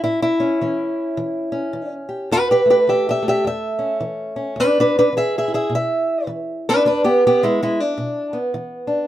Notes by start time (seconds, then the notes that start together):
0.04 A2 E4
0.22 E4
0.40 C#4
0.61 E3 C#4
1.17 E3
1.52 C#4
1.73 E3
2.09 G4
2.31 E2 G4 B4
2.51 G4 B4
2.66 A3
2.70 G4 B4
2.87 E3 G4 E5
3.09 G4 E5
3.22 A3
3.28 G4 E5
3.45 E2 E5
3.79 C#4
4.00 E3
4.36 C#4
4.56 E2 D4
4.60 B4
4.80 D4 B4
4.99 D4 B4
5.13 E3
5.17 G#4 E5
5.38 G#4 E5
5.48 E4
5.54 G#4 E5
5.70 B2
5.75 E5
6.27 E3
6.69 D4 B4
6.85 E2 D4 B4
7.04 B3 G4
7.27 B3 G4
7.43 G#3 E4
7.63 G#3 E4
7.80 D4
7.98 B2
8.33 B3
8.54 E3
8.87 D4